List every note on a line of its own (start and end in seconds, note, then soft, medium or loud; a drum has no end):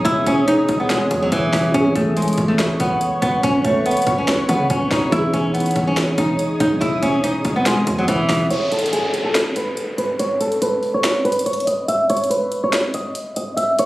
0.00 1.69 E3 medium
0.00 1.70 B3 medium
0.00 1.71 D#4 medium
0.00 1.71 G#4 medium
0.00 1.72 G#4 medium
0.00 1.70 C#5 medium
0.00 1.71 D#6 medium
0.05 0.26 E1 loud
0.05 0.24 E4 medium
0.05 kick loud
0.05 closed hi-hat medium
0.26 0.67 E1 loud
0.26 0.46 C#4 medium
0.26 kick loud
0.26 closed hi-hat medium
0.48 0.78 D#4 medium
0.48 cross-stick medium
0.48 closed hi-hat medium
0.69 1.09 E1 loud
0.69 kick loud
0.69 closed hi-hat medium
0.80 0.89 B3 medium
0.90 1.20 G#3 medium
0.90 snare loud
0.90 closed hi-hat medium
1.11 1.31 E2 loud
1.11 kick loud
1.11 closed hi-hat medium
1.22 1.31 F#3 medium
1.32 1.52 E1 loud
1.32 1.72 E3 medium
1.32 kick loud
1.32 closed hi-hat medium
1.53 1.74 E1 loud
1.53 kick loud
1.53 cross-stick loud
1.53 snare medium
1.53 open hi-hat medium
1.71 1.95 C#2 loud
1.71 5.07 E3 medium
1.71 5.08 B3 medium
1.71 1.94 C#4 medium
1.71 5.09 C#4 medium
1.71 5.09 B4 medium
1.71 8.46 C#5 medium
1.71 5.09 C#6 medium
1.71 kick loud
1.71 closed hi-hat medium
1.77 5.10 G#4 medium
1.96 2.36 C#2 loud
1.96 2.15 A3 medium
1.96 kick loud
1.96 closed hi-hat medium
2.17 2.47 G#3 medium
2.17 closed hi-hat medium
2.22 closed hi-hat medium
2.28 closed hi-hat medium
2.33 closed hi-hat medium
2.38 2.78 C#2 loud
2.38 kick loud
2.38 closed hi-hat medium
2.48 2.58 A3 medium
2.59 snare loud
2.59 closed hi-hat medium
2.80 3.00 C#2 loud
2.80 3.20 B3 medium
2.80 kick loud
2.80 closed hi-hat medium
3.01 closed hi-hat medium
3.22 3.43 C#2 loud
3.22 3.41 B3 medium
3.22 kick loud
3.22 closed hi-hat medium
3.43 3.64 C#2 loud
3.43 3.63 C#4 medium
3.43 kick loud
3.43 closed hi-hat medium
3.65 3.85 C#2 loud
3.65 3.84 A3 medium
3.65 kick loud
3.65 closed hi-hat medium
3.86 4.16 B3 medium
3.86 closed hi-hat medium
3.91 closed hi-hat medium
3.97 closed hi-hat medium
4.02 closed hi-hat medium
4.07 4.47 C#2 loud
4.07 kick loud
4.07 closed hi-hat medium
4.18 4.47 C#4 medium
4.28 snare loud
4.28 closed hi-hat medium
4.49 4.69 C#3 loud
4.49 4.68 B3 medium
4.49 kick loud
4.49 closed hi-hat medium
4.70 4.90 C#2 loud
4.70 4.89 C#4 medium
4.70 kick loud
4.70 closed hi-hat medium
4.91 5.12 C#2 loud
4.91 5.11 D#4 medium
4.91 kick loud
4.91 snare loud
4.91 open hi-hat medium
5.10 5.33 E1 loud
5.10 8.45 E3 medium
5.10 8.46 B3 medium
5.10 8.47 D#4 medium
5.10 5.32 E4 medium
5.10 8.47 G#4 medium
5.10 8.47 D#6 medium
5.10 kick loud
5.10 closed hi-hat medium
5.16 8.48 G#4 medium
5.34 5.54 E1 loud
5.34 5.53 C#4 medium
5.34 kick loud
5.34 closed hi-hat medium
5.54 5.85 B3 medium
5.54 closed hi-hat medium
5.60 closed hi-hat medium
5.66 closed hi-hat medium
5.71 closed hi-hat medium
5.76 5.96 B1 loud
5.76 kick loud
5.76 closed hi-hat medium
5.87 5.96 C#4 medium
5.97 snare loud
5.97 closed hi-hat medium
6.18 6.38 E1 loud
6.18 6.58 D#4 medium
6.18 kick loud
6.18 closed hi-hat medium
6.39 closed hi-hat medium
6.60 6.81 B1 loud
6.60 6.80 D#4 medium
6.60 kick loud
6.60 closed hi-hat medium
6.81 7.02 E1 loud
6.81 7.00 E4 medium
6.81 kick loud
6.81 closed hi-hat medium
7.03 7.43 E1 loud
7.03 7.22 C#4 loud
7.03 kick loud
7.03 closed hi-hat medium
7.24 7.54 D#4 medium
7.24 cross-stick medium
7.24 closed hi-hat medium
7.45 7.85 E1 loud
7.45 kick loud
7.45 closed hi-hat medium
7.56 7.65 B3 medium
7.66 7.96 G#3 medium
7.66 snare loud
7.66 closed hi-hat medium
7.87 8.07 E2 loud
7.87 kick loud
7.87 closed hi-hat medium
7.99 8.08 F#3 medium
8.08 8.28 E1 loud
8.08 8.48 E3 medium
8.08 kick loud
8.08 closed hi-hat medium
8.29 8.50 E1 loud
8.29 kick loud
8.29 cross-stick loud
8.29 snare loud
8.29 open hi-hat medium
8.50 8.70 C#5 medium
8.50 closed hi-hat medium
8.50 downlifter medium
8.72 8.91 A4 medium
8.72 closed hi-hat medium
8.79 closed hi-hat medium
8.86 closed hi-hat medium
8.93 9.23 G#4 medium
8.93 closed hi-hat medium
9.14 closed hi-hat medium
9.24 9.34 A4 medium
9.35 snare loud
9.35 closed hi-hat medium
9.56 9.96 B4 medium
9.56 closed hi-hat medium
9.77 closed hi-hat medium
9.98 10.18 B4 medium
9.98 closed hi-hat medium
10.19 10.39 C#5 medium
10.19 closed hi-hat medium
10.40 10.60 A4 medium
10.40 closed hi-hat medium
10.52 closed hi-hat soft
10.62 10.92 B4 medium
10.62 closed hi-hat medium
10.83 open hi-hat soft
10.94 11.23 C#5 medium
11.04 snare loud
11.04 closed hi-hat medium
11.25 11.44 B4 medium
11.25 closed hi-hat medium
11.32 closed hi-hat medium
11.39 closed hi-hat medium
11.46 11.65 C#5 medium
11.46 closed hi-hat medium
11.53 closed hi-hat medium
11.60 closed hi-hat medium
11.67 11.87 D#5 medium
11.67 closed hi-hat medium
11.88 12.08 E5 medium
11.88 closed hi-hat medium
12.10 12.29 C#5 medium
12.10 closed hi-hat medium
12.17 closed hi-hat medium
12.24 closed hi-hat medium
12.30 12.61 B4 medium
12.30 closed hi-hat medium
12.52 closed hi-hat medium
12.64 12.72 C#5 medium
12.73 snare loud
12.73 closed hi-hat medium
12.94 13.34 D#5 medium
12.94 closed hi-hat medium
13.15 closed hi-hat medium
13.36 13.56 D#5 medium
13.36 closed hi-hat medium
13.57 13.76 E5 medium
13.57 closed hi-hat medium
13.79 13.86 C#5 medium
13.79 closed hi-hat medium